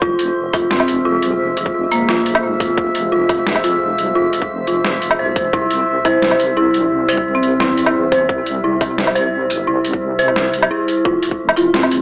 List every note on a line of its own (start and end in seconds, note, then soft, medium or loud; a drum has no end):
0.02 1.24 F1 loud
0.02 5.49 G#3 medium
0.02 5.49 F4 medium
0.02 0.18 F4 loud
0.02 11.01 C5 medium
0.02 11.06 E5 medium
0.02 kick loud
0.19 closed hi-hat medium
0.53 0.69 F4 medium
0.53 0.70 F4 medium
0.53 kick loud
0.53 closed hi-hat medium
0.53 low woodblock soft
0.71 0.76 C4 medium
0.71 snare loud
0.80 0.85 C4 medium
0.80 low woodblock medium
0.88 closed hi-hat medium
1.05 1.22 F4 loud
1.22 1.38 C2 loud
1.22 closed hi-hat medium
1.40 2.10 F1 loud
1.57 1.74 F4 medium
1.57 closed hi-hat medium
1.66 kick medium
1.91 2.40 A#3 medium
1.91 closed hi-hat medium
2.08 2.42 A#1 medium
2.08 2.25 F4 loud
2.08 snare loud
2.26 closed hi-hat medium
2.35 low woodblock medium
2.43 2.76 G#1 loud
2.60 2.77 F4 medium
2.60 kick loud
2.60 closed hi-hat medium
2.77 4.00 F1 loud
2.77 kick loud
2.95 closed hi-hat medium
3.12 3.28 F4 loud
3.29 kick loud
3.29 closed hi-hat medium
3.29 low woodblock soft
3.47 snare loud
3.56 low woodblock medium
3.64 3.80 F4 medium
3.64 closed hi-hat medium
3.98 4.14 C2 medium
3.98 closed hi-hat medium
4.15 5.01 F1 loud
4.15 4.32 F4 loud
4.33 closed hi-hat medium
4.42 kick medium
4.67 4.84 F4 medium
4.67 closed hi-hat medium
4.85 snare loud
5.02 5.20 F1 medium
5.02 closed hi-hat medium
5.11 low woodblock medium
5.19 5.37 C2 loud
5.19 5.35 C5 medium
5.36 5.52 F1 medium
5.36 kick loud
5.36 closed hi-hat medium
5.53 6.75 C2 loud
5.53 11.01 G3 medium
5.53 5.70 E4 loud
5.53 11.01 E4 medium
5.53 kick loud
5.71 closed hi-hat medium
6.05 6.21 E4 medium
6.05 6.55 C5 loud
6.05 kick loud
6.05 closed hi-hat medium
6.05 low woodblock soft
6.22 snare loud
6.31 low woodblock medium
6.40 closed hi-hat medium
6.57 6.78 E4 medium
6.57 6.73 E4 loud
6.74 6.90 A#1 medium
6.74 closed hi-hat medium
6.91 7.62 C2 loud
7.09 7.59 C5 loud
7.09 closed hi-hat medium
7.17 kick medium
7.35 7.55 C4 medium
7.43 closed hi-hat medium
7.60 7.94 E2 medium
7.60 7.95 C4 medium
7.60 7.77 E4 loud
7.60 snare loud
7.77 closed hi-hat medium
7.86 low woodblock medium
7.95 8.28 E2 loud
8.12 8.62 C5 loud
8.12 kick loud
8.12 closed hi-hat medium
8.29 9.51 C2 loud
8.29 kick loud
8.46 closed hi-hat medium
8.64 8.80 E4 loud
8.81 kick loud
8.81 closed hi-hat medium
8.81 low woodblock soft
8.98 snare loud
9.07 low woodblock medium
9.15 9.66 C5 loud
9.15 closed hi-hat medium
9.50 9.66 G1 medium
9.50 closed hi-hat medium
9.67 10.52 C2 loud
9.67 9.84 E4 loud
9.85 closed hi-hat medium
9.93 kick medium
10.19 10.69 C5 loud
10.19 closed hi-hat medium
10.28 low woodblock soft
10.36 snare loud
10.53 10.71 C2 medium
10.53 closed hi-hat medium
10.63 low woodblock medium
10.71 10.87 E4 loud
10.88 closed hi-hat medium
11.05 12.02 F1 loud
11.05 12.02 F3 medium
11.05 12.02 G#3 medium
11.05 11.22 F4 medium
11.05 12.02 C5 medium
11.05 kick loud
11.23 closed hi-hat medium
11.31 kick medium
11.49 low woodblock medium
11.56 11.73 E4 medium
11.56 11.72 F4 medium
11.56 closed hi-hat medium
11.74 11.80 C4 medium
11.74 snare loud
11.83 11.88 C4 medium
11.83 low woodblock medium
11.91 closed hi-hat medium